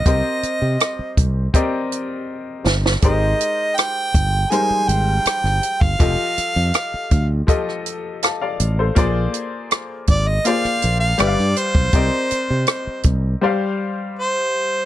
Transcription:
<<
  \new Staff \with { instrumentName = "Harmonica" } { \time 4/4 \key c \minor \tempo 4 = 81 ees''4. r2 r8 | ees''4 g''4 aes''8 g''4~ g''16 f''16~ | f''4.~ f''16 r2 r16 | r4. d''16 ees''16 f''8. f''16 d''8 c''8~ |
c''4. r4. c''4 | }
  \new Staff \with { instrumentName = "Grand piano" } { \time 4/4 \key c \minor << { r1 | r1 | r2. <f'' a''>16 <d'' f''>8 <a' c''>16~ | <a' c''>16 r2. r8. |
r1 | } \\ { <c' g' bes' c'' ees''>4. r8 <c' g' bes' d'' ees''>4. r8 | <aes ees' g' bes' c''>4. r8 <g aes ees' bes' c''>4. r8 | <f f' g' a' ees''>4. r8 <f f' g' a' ees''>4. r8 | <bes f' aes' c'' d''>4. r8 <bes f' aes' c'' d''>4 <g g' b' d'' e'' f''>4 |
<c' g' bes' d'' ees''>4. r8 <g g' c'' d'' f''>4. r8 | } >> }
  \new Staff \with { instrumentName = "Fingered electric bass" } { \clef bass \time 4/4 \key c \minor c,16 r8 c16 r8 c,8 r4. g,,8 | aes,,8 r4 g,,8 r8 aes,,8 r16 g,,16 r16 g,,16 | f,,16 r8 f,16 r8 d,8 r4. a,,8 | bes,,8 r4 aes,,8 r8 bes,,8 g,,16 g,16 r16 b,,16 |
c,16 r8 c16 r8 c,8 r2 | }
  \new DrumStaff \with { instrumentName = "Drums" } \drummode { \time 4/4 <hh bd>8 hh8 <hh ss>8 <hh bd>8 <hh bd>8 hh8 r8 sn16 sn16 | <hh bd>8 hh8 <hh ss>8 <hh bd>8 hh8 hh8 <hh ss>16 ss16 hh16 bd16 | <hh bd>8 hh8 <hh ss>8 <hh bd>8 <hh bd>16 ss16 hh8 <hh ss>8 hh8 | <hh bd>8 hh8 <hh ss>8 <hh bd>8 hh16 ss16 hh8 <hh ss>16 ss16 hh16 bd16 |
<hh bd>8 hh8 <hh ss>8 <hh bd>8 r4 r4 | }
>>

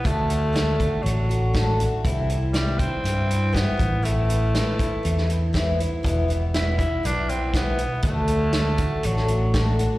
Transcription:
<<
  \new Staff \with { instrumentName = "Tenor saxophone" } { \time 4/4 \key d \mixolydian \tempo 4 = 120 a2 fis4. r8 | r4 g8 c'4. b4 | a2.~ a8 r8 | r4 e'8 e'8 d'8 c'8 b4 |
a2 fis4. r8 | }
  \new Staff \with { instrumentName = "Twelve-string acoustic guitar" } { \time 4/4 \key d \mixolydian <d a d' fis'>8 <a d' fis'>8 <d a d' fis'>8 <a d' fis'>8 <d a d' fis'>8 <a d' fis'>8 <d a d' fis'>8 <a d' fis'>8 | <c e g c' e'>8 <g c' e'>8 <c e g c' e'>8 <g c' e'>8 <e g c' e'>8 <g c' e'>8 <c e g c' e'>8 <b c' e'>8 | <a, e b c' e'>8 <b c' e'>8 <a, e b c' e'>8 <b c' e'>8 <e b c' e'>8 <b c' e'>8 <a, e b c' e'>8 <b c' e'>8 | <e, b, e g b e'>8 <e g b e'>8 <e, b, e g b e'>8 <e g b e'>8 <e g b e'>8 <e g b e'>8 <e, b, e g b e'>8 <e g b e'>8 |
<d a d' fis'>8 <a d' fis'>8 <d a d' fis'>8 <a d' fis'>8 <d a d' fis'>8 <a d' fis'>8 <d a d' fis'>8 <a d' fis'>8 | }
  \new Staff \with { instrumentName = "Fingered electric bass" } { \clef bass \time 4/4 \key d \mixolydian d,2 a,,2 | c,2 g,4. a,,8~ | a,,4. r8 e,2 | e,,2 b,,2 |
d,2 a,,2 | }
  \new DrumStaff \with { instrumentName = "Drums" } \drummode { \time 4/4 <hh bd>8 hh8 <hh sn>8 <hh bd>8 hh8 hh8 <hh bd sn>8 hh8 | <hh bd>8 hh8 <hh sn>8 <hh bd>8 hh8 hh8 <hh bd sn>8 <hh bd>8 | hh8 hh8 <hh sn>8 <hh bd>8 hh16 sn16 hh8 <hh bd sn>8 hh8 | <hh bd>8 hh8 <hh sn>8 <hh bd>8 hh8 hh8 <hh bd sn>8 hh8 |
<hh bd>8 hh8 <hh sn>8 <hh bd>8 hh16 sn16 hh8 <hh bd sn>8 hh8 | }
>>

